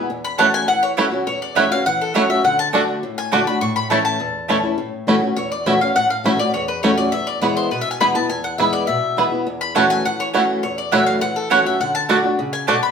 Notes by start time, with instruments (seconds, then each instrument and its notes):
0.10 steel-string acoustic guitar E2
0.24 mandolin B5
0.38 steel-string acoustic guitar E3 A3 C#4 F#4, mandolin A3 E4 C#5 F#5 A5, five-string banjo A3 C#4 E4
0.54 mandolin G#5
0.68 steel-string acoustic guitar E3, mandolin F#5
0.83 mandolin C#5
0.97 steel-string acoustic guitar E3 A3 C#4 F#4, mandolin A3 E4 C#5 F#5, five-string banjo A3 C#4 E4
1.12 steel-string acoustic guitar C#4 F#4
1.27 steel-string acoustic guitar E2, mandolin C#5
1.42 mandolin D5
1.55 steel-string acoustic guitar E3 A3 C#4 F#4, mandolin A3 E4 C#5 E5 F#5, five-string banjo A3 C#4 E4
1.71 steel-string acoustic guitar C#4 F#4, mandolin F5
1.86 steel-string acoustic guitar E3, mandolin F#5
2.01 mandolin A4
2.14 steel-string acoustic guitar E3 A3 C#4 F#4, mandolin A3 E4 C#5 F#5, five-string banjo A3 C#4 E4
2.29 steel-string acoustic guitar C#4 F#4, mandolin E5
2.44 steel-string acoustic guitar D3, mandolin F#5
2.59 mandolin A5
2.73 steel-string acoustic guitar D3 A3 D4 F#4, mandolin A3 F#4 D5 A5, five-string banjo A3 D4 F#4
3.03 steel-string acoustic guitar A2
3.18 mandolin G#5
3.32 steel-string acoustic guitar D3 A3 D4 F#4, mandolin A3 F#4 D5 A5, five-string banjo A3 D4 F#4
3.47 steel-string acoustic guitar D4 F#4, mandolin B5
3.61 steel-string acoustic guitar A2, mandolin C#6
3.76 mandolin B5
3.90 steel-string acoustic guitar E3 A3 C#4 E4, mandolin A3 E4 C#5 A5, five-string banjo A3 C#4 E4
4.05 mandolin A5
4.20 steel-string acoustic guitar E2
4.48 steel-string acoustic guitar E3 A3 C#4 E4, mandolin A3 E4 C#5 A5, five-string banjo A3 C#4 E4
4.63 steel-string acoustic guitar C#4 E4
4.78 steel-string acoustic guitar A2
5.07 steel-string acoustic guitar E3 A3 C#4 F#4, five-string banjo A3 C#4 E4
5.22 steel-string acoustic guitar C#4 F#4
5.36 steel-string acoustic guitar E2, mandolin C#5
5.52 mandolin D5
5.66 steel-string acoustic guitar E3 A3 C#4 F#4, five-string banjo A3 C#4 E4, mandolin E5
5.81 steel-string acoustic guitar C#4 F#4, mandolin F5
5.96 steel-string acoustic guitar A2, mandolin F#5
6.10 mandolin F5
6.24 steel-string acoustic guitar E3 A3 C#4 F#4, five-string banjo A3 C#4 E4, mandolin E5
6.39 steel-string acoustic guitar C#4 F#4, mandolin D5
6.54 steel-string acoustic guitar E2, mandolin C#5
6.68 mandolin B4
6.83 steel-string acoustic guitar E3 A3 C#4 F#4, five-string banjo A3 C#4 E4, mandolin C#5
6.98 steel-string acoustic guitar C#4 F#4, mandolin D5
7.12 steel-string acoustic guitar E2, mandolin E5
7.27 mandolin D5
7.42 steel-string acoustic guitar E3 G#3 B3 E4, five-string banjo B3 E4, mandolin C#5
7.57 mandolin C5
7.71 steel-string acoustic guitar B2, mandolin B4
7.81 mandolin E5
7.91 mandolin G#5
8.00 steel-string acoustic guitar E3 G#3 B3 E4, five-string banjo B3 E4, mandolin B5
8.14 steel-string acoustic guitar B3 E4, mandolin A5
8.29 steel-string acoustic guitar E2, mandolin G#5
8.44 mandolin F#5
8.58 steel-string acoustic guitar E3 G#3 B3 E4, five-string banjo B3 E4, mandolin E5
8.73 mandolin D5
8.87 steel-string acoustic guitar B2, mandolin E5
9.17 steel-string acoustic guitar E3 G#3 B3 E4, five-string banjo B3 E4
9.32 steel-string acoustic guitar B3 E4
9.47 steel-string acoustic guitar E2
9.61 mandolin B5
9.75 steel-string acoustic guitar E3 A3 C#4 F#4, mandolin A3 E4 C#5 F#5 A5, five-string banjo A3 C#4 E4
9.90 mandolin G#5
10.05 steel-string acoustic guitar E3, mandolin F#5
10.20 mandolin C#5
10.33 steel-string acoustic guitar E3 A3 C#4 F#4, mandolin A3 E4 C#5 F#5, five-string banjo A3 C#4 E4
10.63 steel-string acoustic guitar E2, mandolin C#5
10.78 mandolin D5
10.92 steel-string acoustic guitar E3 A3 C#4 F#4, mandolin A3 E4 C#5 E5 F#5, five-string banjo A3 C#4 E4
11.06 mandolin F5
11.21 steel-string acoustic guitar E3, mandolin F#5
11.36 mandolin A4
11.50 steel-string acoustic guitar E3 A3 C#4 F#4, mandolin A3 E4 C#5 F#5, five-string banjo A3 C#4 E4
11.65 steel-string acoustic guitar C#4 F#4, mandolin E5
11.80 steel-string acoustic guitar D3, mandolin F#5
11.95 mandolin A5
12.09 steel-string acoustic guitar D3 A3 D4 F#4, mandolin A3 F#4 D5 A5, five-string banjo A3 D4 F#4
12.24 steel-string acoustic guitar D4 F#4
12.39 steel-string acoustic guitar C#3
12.53 mandolin G#5
12.67 steel-string acoustic guitar B2, mandolin A3 F#4 D5 A5, five-string banjo A3 D4 F#4
12.83 mandolin B5